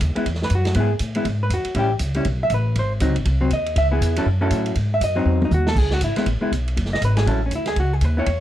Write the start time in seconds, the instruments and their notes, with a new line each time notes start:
0.01 upright bass D#2, kick, hi-hat pedal, ride
0.15 hollow-body jazz guitar G#3 B3 E4, muted upright bass stroke, ride
0.26 upright bass E2, kick, ride
0.34 snare
0.42 hollow-body jazz guitar B4, snare
0.50 upright bass F#2, kick, hi-hat pedal, ride
0.55 hollow-body jazz guitar F#4
0.65 snare, ride
0.74 upright bass G#2, hollow-body jazz guitar G#3 B3 E4, kick, ride
0.80 hollow-body jazz guitar G#4
0.99 upright bass A2, kick, hi-hat pedal, ride
1.15 hollow-body jazz guitar G#3 B3 E4, ride
1.25 upright bass G#2, kick, ride
1.43 hollow-body jazz guitar B4
1.50 upright bass E2, hollow-body jazz guitar F#4, kick, hi-hat pedal, ride
1.65 muted upright bass stroke, ride
1.75 upright bass A1, hollow-body jazz guitar G3 C#4 E4, kick, ride
1.79 hollow-body jazz guitar G4
1.99 upright bass C#2, kick, hi-hat pedal, ride
2.14 hollow-body jazz guitar G3 C#4 E4, ride
2.25 upright bass B1, kick, ride
2.43 hollow-body jazz guitar E5
2.50 upright bass A1, kick, hi-hat pedal, ride
2.54 hollow-body jazz guitar B4
2.75 upright bass G#1, hollow-body jazz guitar C5, kick, ride
3.00 upright bass C#2, hollow-body jazz guitar F#3 C4 D#4, kick, hi-hat pedal, ride
3.10 upright bass C2
3.16 upright bass G#1, ride
3.25 upright bass C2, kick, ride
3.41 hollow-body jazz guitar F#3 C4
3.50 upright bass D#2, hollow-body jazz guitar D#5, kick, hi-hat pedal, ride
3.66 ride
3.76 upright bass C#2, hollow-body jazz guitar E5, kick, ride
3.91 hollow-body jazz guitar B3 E4 G#4
4.01 upright bass E2, kick, hi-hat pedal, ride
4.16 hollow-body jazz guitar F#3 C#4 E4 A4, ride
4.26 upright bass F#2, kick
4.41 hollow-body jazz guitar F#3 C#4 E4 A4
4.51 upright bass A2, kick, hi-hat pedal, ride
4.66 ride
4.75 upright bass G#2, kick, ride
4.94 hollow-body jazz guitar E5
5.01 upright bass F#2, hollow-body jazz guitar D#5, kick, hi-hat pedal, ride
5.15 hollow-body jazz guitar F#3 C4 D#4 C#5
5.25 upright bass E2, hollow-body jazz guitar C5
5.42 hollow-body jazz guitar D#4, high tom
5.51 upright bass D#2, hollow-body jazz guitar F#4, hi-hat pedal, mid tom
5.67 hollow-body jazz guitar A4, snare
5.75 upright bass C#2, hollow-body jazz guitar G#4, kick, crash
5.91 hollow-body jazz guitar F#4, snare
6.01 upright bass G#1, hollow-body jazz guitar E4, kick, hi-hat pedal, ride
6.16 hollow-body jazz guitar G#3 B3 E4, muted upright bass stroke, snare, ride
6.26 upright bass A1, kick, ride
6.41 hollow-body jazz guitar G#3 B3 E4, muted upright bass stroke
6.52 upright bass B1, kick, hi-hat pedal, ride
6.68 ride
6.77 upright bass F#1, kick, ride
6.85 snare
6.93 hollow-body jazz guitar D#5, snare
7.02 upright bass G#1, hollow-body jazz guitar B4, kick, hi-hat pedal, ride
7.17 hollow-body jazz guitar G#4, snare, ride
7.26 upright bass A1, hollow-body jazz guitar F#3 C#4 E4 A4, kick, ride
7.46 hollow-body jazz guitar C#4
7.51 upright bass D2, kick, hi-hat pedal, ride
7.56 hollow-body jazz guitar E4
7.66 hollow-body jazz guitar G#4, snare, ride
7.76 upright bass C#2, hollow-body jazz guitar F#4, kick, ride
7.93 hollow-body jazz guitar G#4
8.01 upright bass D#2, hollow-body jazz guitar B4, kick, hi-hat pedal, ride
8.17 hollow-body jazz guitar B3 E4 C#5
8.26 upright bass E2, kick, ride